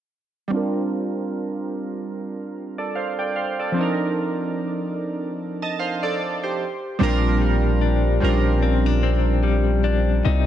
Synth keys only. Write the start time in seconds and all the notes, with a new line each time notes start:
0.48 G3 C4
0.52 D4 F4
0.57 A#4
2.78 A4 D5
2.95 C5 F5
3.19 D5 G5
3.36 C5 F5
3.59 A4 D5
3.72 F3 C4
3.76 D4 D#4
3.81 A#4
5.62 D#5 A5
5.79 C5 F5
6.03 A4 D5
6.44 G4 C5
6.99 G3 C4 D4 F4
7.03 A#4
8.20 G3 C4 C#4 F4
8.24 A#4
8.29 D4